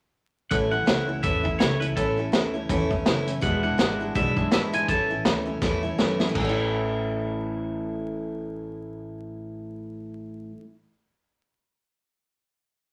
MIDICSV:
0, 0, Header, 1, 5, 480
1, 0, Start_track
1, 0, Key_signature, 3, "major"
1, 0, Tempo, 365408
1, 673, Time_signature, 4, 2, 24, 8
1, 16984, End_track
2, 0, Start_track
2, 0, Title_t, "Clean electric guitar"
2, 0, Program_c, 0, 27
2, 664, Note_on_c, 0, 78, 96
2, 741, Note_off_c, 0, 78, 0
2, 939, Note_on_c, 0, 78, 103
2, 1574, Note_off_c, 0, 78, 0
2, 1615, Note_on_c, 0, 76, 90
2, 2066, Note_off_c, 0, 76, 0
2, 2086, Note_on_c, 0, 73, 89
2, 2355, Note_off_c, 0, 73, 0
2, 2366, Note_on_c, 0, 71, 91
2, 2431, Note_off_c, 0, 71, 0
2, 2572, Note_on_c, 0, 69, 72
2, 3056, Note_off_c, 0, 69, 0
2, 4497, Note_on_c, 0, 78, 90
2, 4757, Note_off_c, 0, 78, 0
2, 4774, Note_on_c, 0, 78, 103
2, 5453, Note_off_c, 0, 78, 0
2, 5458, Note_on_c, 0, 76, 76
2, 5904, Note_off_c, 0, 76, 0
2, 5951, Note_on_c, 0, 76, 80
2, 6025, Note_off_c, 0, 76, 0
2, 6231, Note_on_c, 0, 80, 116
2, 6423, Note_off_c, 0, 80, 0
2, 6428, Note_on_c, 0, 81, 92
2, 6870, Note_off_c, 0, 81, 0
2, 16984, End_track
3, 0, Start_track
3, 0, Title_t, "Steel-string acoustic guitar"
3, 0, Program_c, 1, 25
3, 665, Note_on_c, 1, 45, 82
3, 671, Note_on_c, 1, 52, 67
3, 673, Note_on_c, 1, 57, 74
3, 679, Note_on_c, 1, 61, 82
3, 680, Note_on_c, 1, 64, 76
3, 920, Note_off_c, 1, 64, 0
3, 934, Note_off_c, 1, 61, 0
3, 936, Note_on_c, 1, 64, 59
3, 947, Note_off_c, 1, 57, 0
3, 948, Note_off_c, 1, 45, 0
3, 950, Note_on_c, 1, 61, 51
3, 951, Note_off_c, 1, 52, 0
3, 963, Note_on_c, 1, 57, 47
3, 1127, Note_off_c, 1, 57, 0
3, 1131, Note_on_c, 1, 52, 63
3, 1137, Note_off_c, 1, 61, 0
3, 1142, Note_off_c, 1, 64, 0
3, 1143, Note_on_c, 1, 57, 66
3, 1152, Note_on_c, 1, 61, 64
3, 1156, Note_on_c, 1, 64, 69
3, 1395, Note_off_c, 1, 64, 0
3, 1411, Note_on_c, 1, 64, 49
3, 1412, Note_off_c, 1, 61, 0
3, 1420, Note_off_c, 1, 52, 0
3, 1421, Note_off_c, 1, 57, 0
3, 1428, Note_on_c, 1, 61, 46
3, 1437, Note_on_c, 1, 57, 36
3, 1605, Note_off_c, 1, 57, 0
3, 1608, Note_off_c, 1, 61, 0
3, 1612, Note_on_c, 1, 45, 80
3, 1615, Note_on_c, 1, 52, 78
3, 1619, Note_off_c, 1, 64, 0
3, 1621, Note_on_c, 1, 57, 81
3, 1624, Note_on_c, 1, 61, 75
3, 1632, Note_on_c, 1, 64, 84
3, 1866, Note_off_c, 1, 64, 0
3, 1882, Note_on_c, 1, 64, 56
3, 1884, Note_off_c, 1, 61, 0
3, 1895, Note_off_c, 1, 57, 0
3, 1899, Note_off_c, 1, 45, 0
3, 1900, Note_on_c, 1, 61, 48
3, 1901, Note_off_c, 1, 52, 0
3, 1911, Note_on_c, 1, 57, 44
3, 2085, Note_off_c, 1, 57, 0
3, 2087, Note_on_c, 1, 52, 64
3, 2090, Note_off_c, 1, 61, 0
3, 2093, Note_off_c, 1, 64, 0
3, 2100, Note_on_c, 1, 57, 64
3, 2106, Note_on_c, 1, 61, 65
3, 2114, Note_on_c, 1, 64, 74
3, 2353, Note_off_c, 1, 64, 0
3, 2369, Note_on_c, 1, 64, 56
3, 2370, Note_off_c, 1, 61, 0
3, 2376, Note_off_c, 1, 52, 0
3, 2379, Note_off_c, 1, 57, 0
3, 2386, Note_on_c, 1, 61, 44
3, 2395, Note_on_c, 1, 57, 46
3, 2575, Note_off_c, 1, 57, 0
3, 2575, Note_off_c, 1, 64, 0
3, 2584, Note_off_c, 1, 61, 0
3, 2585, Note_on_c, 1, 45, 82
3, 2589, Note_on_c, 1, 52, 84
3, 2591, Note_on_c, 1, 57, 80
3, 2599, Note_on_c, 1, 61, 71
3, 2602, Note_on_c, 1, 64, 82
3, 2838, Note_off_c, 1, 64, 0
3, 2853, Note_on_c, 1, 64, 53
3, 2858, Note_off_c, 1, 61, 0
3, 2864, Note_off_c, 1, 45, 0
3, 2865, Note_off_c, 1, 52, 0
3, 2867, Note_off_c, 1, 57, 0
3, 2874, Note_on_c, 1, 61, 44
3, 2885, Note_on_c, 1, 57, 41
3, 3045, Note_off_c, 1, 57, 0
3, 3047, Note_on_c, 1, 52, 61
3, 3053, Note_off_c, 1, 61, 0
3, 3057, Note_off_c, 1, 64, 0
3, 3061, Note_on_c, 1, 57, 79
3, 3069, Note_on_c, 1, 61, 71
3, 3078, Note_on_c, 1, 64, 75
3, 3317, Note_off_c, 1, 64, 0
3, 3333, Note_on_c, 1, 64, 62
3, 3334, Note_off_c, 1, 52, 0
3, 3334, Note_off_c, 1, 61, 0
3, 3341, Note_off_c, 1, 57, 0
3, 3350, Note_on_c, 1, 61, 54
3, 3363, Note_on_c, 1, 57, 45
3, 3536, Note_off_c, 1, 64, 0
3, 3538, Note_off_c, 1, 57, 0
3, 3540, Note_off_c, 1, 61, 0
3, 3546, Note_on_c, 1, 45, 91
3, 3548, Note_on_c, 1, 52, 93
3, 3554, Note_on_c, 1, 57, 101
3, 3555, Note_on_c, 1, 61, 97
3, 3560, Note_on_c, 1, 64, 99
3, 3798, Note_off_c, 1, 64, 0
3, 3813, Note_off_c, 1, 61, 0
3, 3813, Note_on_c, 1, 64, 59
3, 3823, Note_off_c, 1, 45, 0
3, 3823, Note_off_c, 1, 52, 0
3, 3827, Note_off_c, 1, 57, 0
3, 3829, Note_on_c, 1, 61, 58
3, 3841, Note_on_c, 1, 57, 49
3, 4015, Note_off_c, 1, 64, 0
3, 4019, Note_off_c, 1, 57, 0
3, 4020, Note_on_c, 1, 52, 65
3, 4023, Note_off_c, 1, 61, 0
3, 4035, Note_on_c, 1, 57, 67
3, 4039, Note_on_c, 1, 61, 78
3, 4048, Note_on_c, 1, 64, 78
3, 4274, Note_off_c, 1, 64, 0
3, 4288, Note_off_c, 1, 61, 0
3, 4290, Note_on_c, 1, 64, 56
3, 4299, Note_off_c, 1, 52, 0
3, 4301, Note_off_c, 1, 57, 0
3, 4304, Note_on_c, 1, 61, 54
3, 4317, Note_on_c, 1, 57, 47
3, 4483, Note_on_c, 1, 40, 75
3, 4484, Note_on_c, 1, 47, 87
3, 4485, Note_off_c, 1, 64, 0
3, 4487, Note_off_c, 1, 57, 0
3, 4491, Note_off_c, 1, 61, 0
3, 4492, Note_on_c, 1, 56, 85
3, 4493, Note_on_c, 1, 52, 72
3, 4496, Note_on_c, 1, 62, 76
3, 4501, Note_on_c, 1, 64, 81
3, 4753, Note_off_c, 1, 64, 0
3, 4763, Note_off_c, 1, 62, 0
3, 4768, Note_off_c, 1, 56, 0
3, 4768, Note_on_c, 1, 64, 54
3, 4770, Note_off_c, 1, 40, 0
3, 4771, Note_off_c, 1, 47, 0
3, 4775, Note_off_c, 1, 52, 0
3, 4779, Note_on_c, 1, 62, 48
3, 4784, Note_on_c, 1, 56, 53
3, 4792, Note_on_c, 1, 52, 45
3, 4947, Note_off_c, 1, 52, 0
3, 4961, Note_off_c, 1, 56, 0
3, 4963, Note_on_c, 1, 52, 72
3, 4969, Note_off_c, 1, 62, 0
3, 4972, Note_off_c, 1, 64, 0
3, 4976, Note_on_c, 1, 56, 69
3, 4984, Note_on_c, 1, 62, 67
3, 4986, Note_on_c, 1, 64, 72
3, 5235, Note_off_c, 1, 64, 0
3, 5247, Note_off_c, 1, 62, 0
3, 5250, Note_off_c, 1, 52, 0
3, 5251, Note_on_c, 1, 64, 51
3, 5257, Note_off_c, 1, 56, 0
3, 5263, Note_on_c, 1, 62, 49
3, 5273, Note_on_c, 1, 56, 43
3, 5281, Note_on_c, 1, 52, 40
3, 5439, Note_off_c, 1, 52, 0
3, 5442, Note_off_c, 1, 56, 0
3, 5448, Note_off_c, 1, 62, 0
3, 5449, Note_on_c, 1, 40, 76
3, 5453, Note_off_c, 1, 64, 0
3, 5455, Note_on_c, 1, 52, 79
3, 5456, Note_on_c, 1, 47, 89
3, 5457, Note_on_c, 1, 56, 74
3, 5464, Note_on_c, 1, 62, 88
3, 5469, Note_on_c, 1, 64, 93
3, 5714, Note_off_c, 1, 64, 0
3, 5721, Note_off_c, 1, 62, 0
3, 5730, Note_on_c, 1, 64, 51
3, 5732, Note_off_c, 1, 56, 0
3, 5733, Note_off_c, 1, 40, 0
3, 5736, Note_off_c, 1, 52, 0
3, 5737, Note_off_c, 1, 47, 0
3, 5737, Note_on_c, 1, 62, 55
3, 5748, Note_on_c, 1, 56, 49
3, 5756, Note_on_c, 1, 52, 40
3, 5911, Note_off_c, 1, 52, 0
3, 5922, Note_off_c, 1, 56, 0
3, 5927, Note_on_c, 1, 52, 65
3, 5933, Note_off_c, 1, 62, 0
3, 5933, Note_off_c, 1, 64, 0
3, 5938, Note_on_c, 1, 56, 68
3, 5949, Note_on_c, 1, 62, 66
3, 5956, Note_on_c, 1, 64, 75
3, 6195, Note_off_c, 1, 64, 0
3, 6209, Note_off_c, 1, 62, 0
3, 6210, Note_on_c, 1, 64, 56
3, 6212, Note_off_c, 1, 52, 0
3, 6218, Note_off_c, 1, 56, 0
3, 6225, Note_on_c, 1, 62, 54
3, 6235, Note_on_c, 1, 56, 46
3, 6237, Note_on_c, 1, 52, 46
3, 6413, Note_off_c, 1, 64, 0
3, 6416, Note_off_c, 1, 52, 0
3, 6421, Note_off_c, 1, 62, 0
3, 6423, Note_on_c, 1, 45, 75
3, 6426, Note_off_c, 1, 56, 0
3, 6432, Note_on_c, 1, 52, 74
3, 6435, Note_on_c, 1, 57, 76
3, 6436, Note_on_c, 1, 61, 90
3, 6442, Note_on_c, 1, 64, 75
3, 6686, Note_off_c, 1, 64, 0
3, 6694, Note_off_c, 1, 61, 0
3, 6701, Note_off_c, 1, 45, 0
3, 6702, Note_on_c, 1, 64, 51
3, 6705, Note_off_c, 1, 52, 0
3, 6707, Note_off_c, 1, 57, 0
3, 6710, Note_on_c, 1, 61, 56
3, 6727, Note_on_c, 1, 57, 46
3, 6891, Note_off_c, 1, 57, 0
3, 6899, Note_off_c, 1, 64, 0
3, 6901, Note_off_c, 1, 61, 0
3, 6901, Note_on_c, 1, 52, 65
3, 6906, Note_on_c, 1, 57, 67
3, 6916, Note_on_c, 1, 61, 75
3, 6922, Note_on_c, 1, 64, 68
3, 7148, Note_off_c, 1, 64, 0
3, 7164, Note_on_c, 1, 64, 63
3, 7167, Note_off_c, 1, 61, 0
3, 7175, Note_off_c, 1, 57, 0
3, 7181, Note_off_c, 1, 52, 0
3, 7183, Note_on_c, 1, 61, 56
3, 7191, Note_on_c, 1, 57, 49
3, 7371, Note_off_c, 1, 64, 0
3, 7373, Note_off_c, 1, 57, 0
3, 7375, Note_off_c, 1, 61, 0
3, 7376, Note_on_c, 1, 45, 88
3, 7382, Note_on_c, 1, 52, 94
3, 7389, Note_on_c, 1, 57, 98
3, 7391, Note_on_c, 1, 61, 96
3, 7398, Note_on_c, 1, 64, 94
3, 7638, Note_off_c, 1, 64, 0
3, 7654, Note_on_c, 1, 64, 59
3, 7657, Note_off_c, 1, 61, 0
3, 7659, Note_off_c, 1, 45, 0
3, 7662, Note_off_c, 1, 52, 0
3, 7665, Note_off_c, 1, 57, 0
3, 7673, Note_on_c, 1, 61, 51
3, 7680, Note_on_c, 1, 57, 53
3, 7851, Note_off_c, 1, 57, 0
3, 7857, Note_off_c, 1, 64, 0
3, 7861, Note_on_c, 1, 52, 78
3, 7864, Note_off_c, 1, 61, 0
3, 7867, Note_on_c, 1, 57, 76
3, 7879, Note_on_c, 1, 61, 80
3, 7884, Note_on_c, 1, 64, 75
3, 8124, Note_off_c, 1, 64, 0
3, 8139, Note_off_c, 1, 61, 0
3, 8140, Note_on_c, 1, 64, 63
3, 8142, Note_off_c, 1, 52, 0
3, 8145, Note_off_c, 1, 57, 0
3, 8155, Note_on_c, 1, 61, 53
3, 8166, Note_on_c, 1, 57, 44
3, 8262, Note_on_c, 1, 45, 78
3, 8341, Note_off_c, 1, 64, 0
3, 8343, Note_on_c, 1, 52, 69
3, 8348, Note_off_c, 1, 61, 0
3, 8353, Note_off_c, 1, 57, 0
3, 8410, Note_on_c, 1, 57, 82
3, 8468, Note_on_c, 1, 61, 88
3, 8527, Note_on_c, 1, 64, 85
3, 13802, Note_off_c, 1, 45, 0
3, 13883, Note_off_c, 1, 52, 0
3, 13950, Note_off_c, 1, 57, 0
3, 14008, Note_off_c, 1, 61, 0
3, 14067, Note_off_c, 1, 64, 0
3, 16984, End_track
4, 0, Start_track
4, 0, Title_t, "Upright bass"
4, 0, Program_c, 2, 32
4, 672, Note_on_c, 2, 33, 85
4, 1045, Note_off_c, 2, 33, 0
4, 1147, Note_on_c, 2, 37, 85
4, 1520, Note_off_c, 2, 37, 0
4, 1624, Note_on_c, 2, 40, 100
4, 1998, Note_off_c, 2, 40, 0
4, 2100, Note_on_c, 2, 37, 89
4, 2475, Note_off_c, 2, 37, 0
4, 2581, Note_on_c, 2, 33, 87
4, 2955, Note_off_c, 2, 33, 0
4, 3057, Note_on_c, 2, 38, 79
4, 3432, Note_off_c, 2, 38, 0
4, 3540, Note_on_c, 2, 40, 107
4, 3913, Note_off_c, 2, 40, 0
4, 4010, Note_on_c, 2, 30, 91
4, 4387, Note_off_c, 2, 30, 0
4, 4499, Note_on_c, 2, 28, 88
4, 4872, Note_off_c, 2, 28, 0
4, 4978, Note_on_c, 2, 32, 94
4, 5351, Note_off_c, 2, 32, 0
4, 5457, Note_on_c, 2, 35, 89
4, 5831, Note_off_c, 2, 35, 0
4, 5935, Note_on_c, 2, 32, 90
4, 6310, Note_off_c, 2, 32, 0
4, 6413, Note_on_c, 2, 33, 88
4, 6789, Note_off_c, 2, 33, 0
4, 6894, Note_on_c, 2, 38, 86
4, 7270, Note_off_c, 2, 38, 0
4, 7378, Note_on_c, 2, 40, 89
4, 7753, Note_off_c, 2, 40, 0
4, 7863, Note_on_c, 2, 42, 87
4, 8237, Note_off_c, 2, 42, 0
4, 8343, Note_on_c, 2, 33, 92
4, 13830, Note_off_c, 2, 33, 0
4, 16984, End_track
5, 0, Start_track
5, 0, Title_t, "Drums"
5, 669, Note_on_c, 9, 42, 59
5, 672, Note_on_c, 9, 36, 104
5, 801, Note_off_c, 9, 42, 0
5, 803, Note_off_c, 9, 36, 0
5, 1147, Note_on_c, 9, 38, 119
5, 1147, Note_on_c, 9, 42, 72
5, 1278, Note_off_c, 9, 38, 0
5, 1278, Note_off_c, 9, 42, 0
5, 1622, Note_on_c, 9, 42, 63
5, 1625, Note_on_c, 9, 36, 100
5, 1754, Note_off_c, 9, 42, 0
5, 1756, Note_off_c, 9, 36, 0
5, 1906, Note_on_c, 9, 36, 85
5, 2037, Note_off_c, 9, 36, 0
5, 2104, Note_on_c, 9, 38, 124
5, 2104, Note_on_c, 9, 42, 64
5, 2235, Note_off_c, 9, 38, 0
5, 2235, Note_off_c, 9, 42, 0
5, 2388, Note_on_c, 9, 42, 58
5, 2519, Note_off_c, 9, 42, 0
5, 2583, Note_on_c, 9, 36, 100
5, 2584, Note_on_c, 9, 42, 61
5, 2714, Note_off_c, 9, 36, 0
5, 2715, Note_off_c, 9, 42, 0
5, 3062, Note_on_c, 9, 38, 119
5, 3062, Note_on_c, 9, 42, 64
5, 3193, Note_off_c, 9, 38, 0
5, 3193, Note_off_c, 9, 42, 0
5, 3540, Note_on_c, 9, 36, 116
5, 3540, Note_on_c, 9, 42, 54
5, 3671, Note_off_c, 9, 36, 0
5, 3671, Note_off_c, 9, 42, 0
5, 3819, Note_on_c, 9, 36, 78
5, 3951, Note_off_c, 9, 36, 0
5, 4018, Note_on_c, 9, 38, 120
5, 4018, Note_on_c, 9, 42, 62
5, 4149, Note_off_c, 9, 38, 0
5, 4149, Note_off_c, 9, 42, 0
5, 4301, Note_on_c, 9, 42, 57
5, 4432, Note_off_c, 9, 42, 0
5, 4499, Note_on_c, 9, 36, 93
5, 4501, Note_on_c, 9, 42, 56
5, 4630, Note_off_c, 9, 36, 0
5, 4632, Note_off_c, 9, 42, 0
5, 4977, Note_on_c, 9, 38, 125
5, 4977, Note_on_c, 9, 42, 64
5, 5108, Note_off_c, 9, 38, 0
5, 5108, Note_off_c, 9, 42, 0
5, 5457, Note_on_c, 9, 36, 113
5, 5458, Note_on_c, 9, 42, 64
5, 5588, Note_off_c, 9, 36, 0
5, 5589, Note_off_c, 9, 42, 0
5, 5736, Note_on_c, 9, 36, 81
5, 5868, Note_off_c, 9, 36, 0
5, 5933, Note_on_c, 9, 38, 117
5, 5933, Note_on_c, 9, 42, 65
5, 6065, Note_off_c, 9, 38, 0
5, 6065, Note_off_c, 9, 42, 0
5, 6217, Note_on_c, 9, 42, 67
5, 6348, Note_off_c, 9, 42, 0
5, 6415, Note_on_c, 9, 42, 55
5, 6416, Note_on_c, 9, 36, 102
5, 6547, Note_off_c, 9, 42, 0
5, 6548, Note_off_c, 9, 36, 0
5, 6897, Note_on_c, 9, 38, 126
5, 6897, Note_on_c, 9, 42, 67
5, 7029, Note_off_c, 9, 38, 0
5, 7029, Note_off_c, 9, 42, 0
5, 7380, Note_on_c, 9, 36, 113
5, 7381, Note_on_c, 9, 38, 63
5, 7511, Note_off_c, 9, 36, 0
5, 7512, Note_off_c, 9, 38, 0
5, 7863, Note_on_c, 9, 38, 94
5, 7994, Note_off_c, 9, 38, 0
5, 8140, Note_on_c, 9, 38, 77
5, 8272, Note_off_c, 9, 38, 0
5, 8343, Note_on_c, 9, 49, 80
5, 8344, Note_on_c, 9, 36, 95
5, 8475, Note_off_c, 9, 36, 0
5, 8475, Note_off_c, 9, 49, 0
5, 16984, End_track
0, 0, End_of_file